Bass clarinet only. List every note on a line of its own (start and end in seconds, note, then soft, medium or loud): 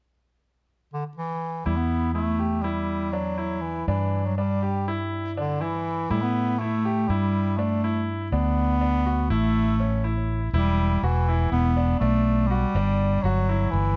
0.94 1.05 D3 medium
1.17 1.67 E3 medium
1.65 1.78 G3 medium
1.77 2.13 B3 medium
2.13 2.64 A3 medium
2.62 3.14 G3 medium
3.12 3.63 F#3 medium
3.62 3.87 E3 medium
3.88 4.27 E3 medium
4.26 4.37 F#3 medium
4.37 5.08 G3 medium
5.38 5.63 D3 medium
5.61 6.12 E3 medium
6.11 6.24 G3 medium
6.22 6.61 B3 medium
6.59 7.10 A3 medium
7.08 7.59 G3 medium
7.57 8.07 A3 medium
8.32 9.27 B3 medium
9.31 10.25 A3 medium
10.55 11.05 G3 medium
11.04 11.51 E3 medium
11.52 11.98 B3 medium
12.00 12.49 A3 medium
12.47 13.24 G3 medium
13.22 13.73 F#3 medium
13.71 13.96 E3 medium